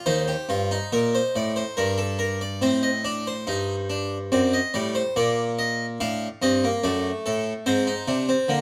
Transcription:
0, 0, Header, 1, 2, 480
1, 0, Start_track
1, 0, Tempo, 851064
1, 36, Time_signature, 3, 2, 24, 8
1, 2436, Tempo, 833333
1, 4908, End_track
2, 0, Start_track
2, 0, Title_t, "Harpsichord"
2, 0, Program_c, 0, 6
2, 34, Note_on_c, 0, 72, 68
2, 35, Note_on_c, 0, 63, 75
2, 38, Note_on_c, 0, 39, 87
2, 151, Note_off_c, 0, 63, 0
2, 157, Note_on_c, 0, 67, 71
2, 186, Note_off_c, 0, 39, 0
2, 273, Note_off_c, 0, 67, 0
2, 276, Note_on_c, 0, 43, 79
2, 280, Note_on_c, 0, 65, 73
2, 395, Note_off_c, 0, 65, 0
2, 402, Note_on_c, 0, 63, 66
2, 425, Note_off_c, 0, 43, 0
2, 501, Note_off_c, 0, 72, 0
2, 522, Note_on_c, 0, 46, 82
2, 522, Note_on_c, 0, 70, 67
2, 636, Note_off_c, 0, 70, 0
2, 647, Note_on_c, 0, 72, 68
2, 670, Note_off_c, 0, 46, 0
2, 759, Note_off_c, 0, 72, 0
2, 764, Note_on_c, 0, 45, 75
2, 766, Note_on_c, 0, 74, 65
2, 878, Note_off_c, 0, 74, 0
2, 881, Note_on_c, 0, 72, 62
2, 911, Note_off_c, 0, 45, 0
2, 983, Note_off_c, 0, 63, 0
2, 995, Note_off_c, 0, 72, 0
2, 998, Note_on_c, 0, 70, 65
2, 1003, Note_on_c, 0, 43, 69
2, 1004, Note_on_c, 0, 62, 60
2, 1114, Note_off_c, 0, 70, 0
2, 1115, Note_on_c, 0, 69, 62
2, 1233, Note_off_c, 0, 69, 0
2, 1234, Note_on_c, 0, 70, 62
2, 1353, Note_off_c, 0, 70, 0
2, 1361, Note_on_c, 0, 74, 60
2, 1467, Note_off_c, 0, 43, 0
2, 1468, Note_off_c, 0, 62, 0
2, 1475, Note_on_c, 0, 45, 60
2, 1477, Note_off_c, 0, 74, 0
2, 1477, Note_on_c, 0, 60, 72
2, 1478, Note_on_c, 0, 72, 57
2, 1595, Note_on_c, 0, 75, 58
2, 1596, Note_off_c, 0, 72, 0
2, 1627, Note_off_c, 0, 60, 0
2, 1715, Note_off_c, 0, 75, 0
2, 1717, Note_on_c, 0, 62, 62
2, 1718, Note_on_c, 0, 74, 55
2, 1836, Note_off_c, 0, 74, 0
2, 1846, Note_on_c, 0, 72, 54
2, 1867, Note_off_c, 0, 62, 0
2, 1943, Note_off_c, 0, 45, 0
2, 1958, Note_on_c, 0, 43, 59
2, 1959, Note_on_c, 0, 63, 74
2, 2107, Note_off_c, 0, 63, 0
2, 2198, Note_on_c, 0, 62, 62
2, 2345, Note_off_c, 0, 62, 0
2, 2421, Note_off_c, 0, 43, 0
2, 2421, Note_off_c, 0, 72, 0
2, 2436, Note_on_c, 0, 60, 70
2, 2437, Note_on_c, 0, 74, 60
2, 2438, Note_on_c, 0, 42, 57
2, 2554, Note_off_c, 0, 74, 0
2, 2559, Note_on_c, 0, 75, 60
2, 2586, Note_off_c, 0, 60, 0
2, 2588, Note_off_c, 0, 42, 0
2, 2675, Note_off_c, 0, 75, 0
2, 2678, Note_on_c, 0, 74, 61
2, 2680, Note_on_c, 0, 55, 61
2, 2682, Note_on_c, 0, 45, 57
2, 2795, Note_off_c, 0, 74, 0
2, 2799, Note_on_c, 0, 72, 59
2, 2829, Note_off_c, 0, 55, 0
2, 2830, Note_off_c, 0, 45, 0
2, 2916, Note_off_c, 0, 72, 0
2, 2922, Note_on_c, 0, 46, 69
2, 2923, Note_on_c, 0, 74, 75
2, 2924, Note_on_c, 0, 58, 69
2, 3071, Note_off_c, 0, 74, 0
2, 3166, Note_on_c, 0, 75, 76
2, 3314, Note_off_c, 0, 75, 0
2, 3390, Note_off_c, 0, 46, 0
2, 3391, Note_off_c, 0, 58, 0
2, 3407, Note_on_c, 0, 45, 67
2, 3407, Note_on_c, 0, 62, 75
2, 3407, Note_on_c, 0, 77, 87
2, 3555, Note_off_c, 0, 45, 0
2, 3555, Note_off_c, 0, 62, 0
2, 3555, Note_off_c, 0, 77, 0
2, 3644, Note_on_c, 0, 43, 64
2, 3647, Note_on_c, 0, 75, 80
2, 3651, Note_on_c, 0, 60, 69
2, 3764, Note_off_c, 0, 60, 0
2, 3774, Note_on_c, 0, 58, 67
2, 3793, Note_off_c, 0, 43, 0
2, 3795, Note_off_c, 0, 75, 0
2, 3885, Note_off_c, 0, 58, 0
2, 3885, Note_on_c, 0, 57, 68
2, 3886, Note_on_c, 0, 42, 62
2, 3886, Note_on_c, 0, 74, 74
2, 4033, Note_off_c, 0, 42, 0
2, 4034, Note_off_c, 0, 74, 0
2, 4129, Note_on_c, 0, 69, 78
2, 4135, Note_on_c, 0, 45, 61
2, 4275, Note_off_c, 0, 69, 0
2, 4279, Note_off_c, 0, 45, 0
2, 4348, Note_off_c, 0, 57, 0
2, 4362, Note_on_c, 0, 60, 76
2, 4362, Note_on_c, 0, 72, 78
2, 4365, Note_on_c, 0, 44, 87
2, 4476, Note_off_c, 0, 60, 0
2, 4482, Note_on_c, 0, 63, 65
2, 4511, Note_off_c, 0, 44, 0
2, 4596, Note_off_c, 0, 63, 0
2, 4600, Note_on_c, 0, 48, 73
2, 4600, Note_on_c, 0, 62, 64
2, 4714, Note_off_c, 0, 62, 0
2, 4722, Note_on_c, 0, 60, 69
2, 4748, Note_off_c, 0, 48, 0
2, 4835, Note_on_c, 0, 50, 83
2, 4836, Note_off_c, 0, 60, 0
2, 4841, Note_on_c, 0, 58, 65
2, 4908, Note_off_c, 0, 50, 0
2, 4908, Note_off_c, 0, 58, 0
2, 4908, Note_off_c, 0, 72, 0
2, 4908, End_track
0, 0, End_of_file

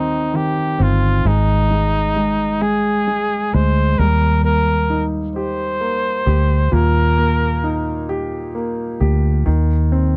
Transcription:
0, 0, Header, 1, 4, 480
1, 0, Start_track
1, 0, Key_signature, -3, "major"
1, 0, Tempo, 911854
1, 660, Time_signature, 6, 3, 24, 8
1, 5352, End_track
2, 0, Start_track
2, 0, Title_t, "Flugelhorn"
2, 0, Program_c, 0, 56
2, 0, Note_on_c, 0, 63, 66
2, 188, Note_on_c, 0, 67, 72
2, 196, Note_off_c, 0, 63, 0
2, 434, Note_on_c, 0, 65, 74
2, 442, Note_off_c, 0, 67, 0
2, 669, Note_on_c, 0, 63, 87
2, 677, Note_off_c, 0, 65, 0
2, 1379, Note_on_c, 0, 68, 81
2, 1387, Note_off_c, 0, 63, 0
2, 1865, Note_on_c, 0, 72, 83
2, 1873, Note_off_c, 0, 68, 0
2, 2099, Note_on_c, 0, 70, 91
2, 2107, Note_off_c, 0, 72, 0
2, 2338, Note_off_c, 0, 70, 0
2, 2341, Note_on_c, 0, 70, 83
2, 2658, Note_off_c, 0, 70, 0
2, 2820, Note_on_c, 0, 72, 82
2, 3546, Note_on_c, 0, 70, 85
2, 3554, Note_off_c, 0, 72, 0
2, 4264, Note_off_c, 0, 70, 0
2, 5352, End_track
3, 0, Start_track
3, 0, Title_t, "Grand piano"
3, 0, Program_c, 1, 0
3, 0, Control_c, 1, 64, 127
3, 0, Note_on_c, 1, 51, 45
3, 0, Note_on_c, 1, 60, 48
3, 168, Note_off_c, 1, 51, 0
3, 176, Note_on_c, 1, 51, 47
3, 408, Note_off_c, 1, 60, 0
3, 416, Note_on_c, 1, 60, 51
3, 644, Note_off_c, 1, 51, 0
3, 651, Note_off_c, 1, 60, 0
3, 660, Note_on_c, 1, 56, 53
3, 668, Control_c, 1, 64, 0
3, 760, Control_c, 1, 64, 127
3, 891, Note_off_c, 1, 56, 0
3, 899, Note_on_c, 1, 56, 46
3, 1131, Note_off_c, 1, 56, 0
3, 1139, Note_on_c, 1, 56, 46
3, 1369, Note_off_c, 1, 56, 0
3, 1377, Note_on_c, 1, 56, 48
3, 1611, Note_off_c, 1, 56, 0
3, 1619, Note_on_c, 1, 56, 45
3, 1857, Note_off_c, 1, 56, 0
3, 1865, Note_on_c, 1, 56, 51
3, 2096, Note_off_c, 1, 56, 0
3, 2104, Note_on_c, 1, 55, 55
3, 2108, Control_c, 1, 64, 0
3, 2184, Control_c, 1, 64, 127
3, 2340, Note_on_c, 1, 58, 42
3, 2579, Note_on_c, 1, 63, 43
3, 2822, Note_on_c, 1, 67, 45
3, 3050, Note_off_c, 1, 58, 0
3, 3058, Note_on_c, 1, 58, 43
3, 3289, Note_off_c, 1, 67, 0
3, 3297, Note_on_c, 1, 67, 48
3, 3519, Note_off_c, 1, 63, 0
3, 3522, Note_off_c, 1, 55, 0
3, 3536, Note_on_c, 1, 46, 58
3, 3771, Note_off_c, 1, 58, 0
3, 3779, Note_on_c, 1, 58, 47
3, 4020, Note_on_c, 1, 63, 47
3, 4238, Note_off_c, 1, 67, 0
3, 4259, Note_on_c, 1, 67, 54
3, 4492, Note_off_c, 1, 58, 0
3, 4500, Note_on_c, 1, 58, 49
3, 4732, Note_off_c, 1, 67, 0
3, 4740, Note_on_c, 1, 67, 51
3, 4957, Note_off_c, 1, 46, 0
3, 4959, Note_off_c, 1, 63, 0
3, 4966, Note_off_c, 1, 58, 0
3, 4974, Note_off_c, 1, 67, 0
3, 4979, Note_on_c, 1, 51, 56
3, 4989, Control_c, 1, 64, 0
3, 5094, Control_c, 1, 64, 127
3, 5222, Note_on_c, 1, 60, 49
3, 5352, Note_off_c, 1, 51, 0
3, 5352, Note_off_c, 1, 60, 0
3, 5352, End_track
4, 0, Start_track
4, 0, Title_t, "Fingered electric bass"
4, 0, Program_c, 2, 33
4, 0, Note_on_c, 2, 39, 93
4, 402, Note_off_c, 2, 39, 0
4, 421, Note_on_c, 2, 31, 70
4, 646, Note_off_c, 2, 31, 0
4, 659, Note_on_c, 2, 32, 86
4, 1839, Note_off_c, 2, 32, 0
4, 1866, Note_on_c, 2, 38, 71
4, 2089, Note_off_c, 2, 38, 0
4, 2102, Note_on_c, 2, 39, 82
4, 3281, Note_off_c, 2, 39, 0
4, 3301, Note_on_c, 2, 38, 73
4, 3527, Note_off_c, 2, 38, 0
4, 3541, Note_on_c, 2, 39, 82
4, 4720, Note_off_c, 2, 39, 0
4, 4744, Note_on_c, 2, 38, 75
4, 4968, Note_off_c, 2, 38, 0
4, 4986, Note_on_c, 2, 39, 89
4, 5352, Note_off_c, 2, 39, 0
4, 5352, End_track
0, 0, End_of_file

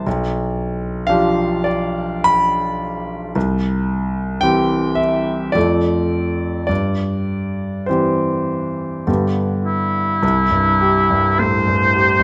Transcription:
0, 0, Header, 1, 3, 480
1, 0, Start_track
1, 0, Key_signature, 0, "major"
1, 0, Tempo, 1025641
1, 27, Time_signature, 3, 2, 24, 8
1, 507, Tempo, 1181102
1, 987, Tempo, 1083032
1, 1947, Tempo, 1125704
1, 2427, Tempo, 1142857
1, 2907, Tempo, 1190476
1, 3867, Tempo, 1160542
1, 4827, Tempo, 1063830
1, 5201, End_track
2, 0, Start_track
2, 0, Title_t, "Oboe"
2, 0, Program_c, 0, 68
2, 4104, Note_on_c, 0, 64, 60
2, 4824, Note_on_c, 0, 72, 76
2, 4831, Note_off_c, 0, 64, 0
2, 5201, Note_off_c, 0, 72, 0
2, 5201, End_track
3, 0, Start_track
3, 0, Title_t, "Grand piano"
3, 0, Program_c, 1, 0
3, 0, Control_c, 1, 64, 127
3, 30, Note_on_c, 1, 35, 47
3, 36, Control_c, 1, 64, 0
3, 102, Control_c, 1, 64, 127
3, 494, Note_off_c, 1, 35, 0
3, 499, Note_on_c, 1, 77, 79
3, 510, Note_on_c, 1, 53, 38
3, 511, Note_on_c, 1, 62, 38
3, 512, Note_on_c, 1, 67, 39
3, 733, Note_on_c, 1, 74, 59
3, 738, Note_off_c, 1, 77, 0
3, 978, Note_on_c, 1, 83, 82
3, 983, Note_off_c, 1, 74, 0
3, 1454, Note_off_c, 1, 53, 0
3, 1454, Note_off_c, 1, 62, 0
3, 1455, Note_off_c, 1, 67, 0
3, 1465, Note_off_c, 1, 83, 0
3, 1470, Note_on_c, 1, 36, 44
3, 1479, Control_c, 1, 64, 0
3, 1564, Control_c, 1, 64, 127
3, 1933, Note_off_c, 1, 36, 0
3, 1937, Note_on_c, 1, 79, 77
3, 1946, Note_on_c, 1, 52, 35
3, 1948, Note_on_c, 1, 60, 37
3, 1948, Note_on_c, 1, 67, 38
3, 2170, Note_on_c, 1, 76, 60
3, 2181, Note_off_c, 1, 79, 0
3, 2409, Note_off_c, 1, 52, 0
3, 2410, Note_off_c, 1, 60, 0
3, 2411, Note_off_c, 1, 67, 0
3, 2413, Note_on_c, 1, 74, 65
3, 2419, Note_off_c, 1, 76, 0
3, 2422, Note_on_c, 1, 53, 32
3, 2425, Note_on_c, 1, 41, 38
3, 2427, Note_on_c, 1, 57, 32
3, 2428, Note_on_c, 1, 69, 30
3, 2434, Control_c, 1, 64, 0
3, 2525, Control_c, 1, 64, 127
3, 2888, Note_off_c, 1, 53, 0
3, 2888, Note_off_c, 1, 74, 0
3, 2890, Note_off_c, 1, 57, 0
3, 2890, Note_off_c, 1, 69, 0
3, 2891, Note_off_c, 1, 41, 0
3, 2894, Note_on_c, 1, 74, 55
3, 2904, Note_on_c, 1, 43, 37
3, 2914, Control_c, 1, 64, 0
3, 2998, Control_c, 1, 64, 127
3, 3376, Note_off_c, 1, 43, 0
3, 3377, Note_on_c, 1, 72, 45
3, 3385, Note_off_c, 1, 74, 0
3, 3388, Note_on_c, 1, 52, 30
3, 3390, Note_on_c, 1, 60, 27
3, 3390, Note_on_c, 1, 67, 32
3, 3848, Note_off_c, 1, 52, 0
3, 3849, Note_off_c, 1, 60, 0
3, 3849, Note_off_c, 1, 67, 0
3, 3859, Note_off_c, 1, 72, 0
3, 3863, Note_on_c, 1, 50, 29
3, 3864, Note_on_c, 1, 43, 36
3, 3866, Note_on_c, 1, 59, 29
3, 3866, Note_on_c, 1, 67, 27
3, 3875, Control_c, 1, 64, 0
3, 3939, Control_c, 1, 64, 127
3, 4323, Note_off_c, 1, 50, 0
3, 4324, Note_off_c, 1, 59, 0
3, 4324, Note_off_c, 1, 67, 0
3, 4325, Note_off_c, 1, 43, 0
3, 4341, Note_on_c, 1, 36, 44
3, 4349, Control_c, 1, 64, 0
3, 4430, Control_c, 1, 64, 127
3, 4458, Note_on_c, 1, 43, 35
3, 4581, Note_on_c, 1, 67, 39
3, 4657, Note_off_c, 1, 43, 0
3, 4705, Note_on_c, 1, 43, 35
3, 4778, Note_off_c, 1, 67, 0
3, 4823, Note_on_c, 1, 45, 33
3, 4901, Note_off_c, 1, 43, 0
3, 4949, Note_off_c, 1, 45, 0
3, 4951, Note_on_c, 1, 43, 31
3, 5070, Note_on_c, 1, 67, 32
3, 5140, Note_off_c, 1, 43, 0
3, 5187, Note_on_c, 1, 43, 33
3, 5201, Note_off_c, 1, 36, 0
3, 5201, Note_off_c, 1, 43, 0
3, 5201, Note_off_c, 1, 67, 0
3, 5201, End_track
0, 0, End_of_file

